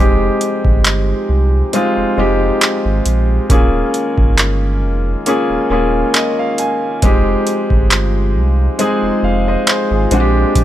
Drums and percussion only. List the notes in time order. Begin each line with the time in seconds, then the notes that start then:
0.41 closed hi-hat
0.65 kick
0.85 clap, closed hi-hat
1.73 closed hi-hat
2.61 clap, closed hi-hat
3.06 closed hi-hat
3.50 kick, closed hi-hat
3.94 closed hi-hat
4.18 kick
4.38 clap, closed hi-hat
5.26 closed hi-hat
6.14 clap, closed hi-hat
6.58 closed hi-hat
7.02 kick, closed hi-hat
7.47 closed hi-hat
7.70 kick
7.91 clap, closed hi-hat
8.79 closed hi-hat
9.67 clap, closed hi-hat
10.11 closed hi-hat
10.55 kick, closed hi-hat